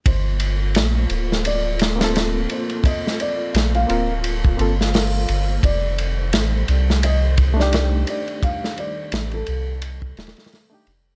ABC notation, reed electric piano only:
X:1
M:4/4
L:1/16
Q:"Swing 16ths" 1/4=86
K:Gm
V:1 name="Reed electric piano"
z8 z3 [B,CFA]4- [B,CFA]- | [B,CFA]6 [B,CFB] z3 [B,CFA] z4 z | z8 z3 [A,DEG]4- [A,DEG]- | [A,DEG]6 z6 z [A,DEG] z2 |]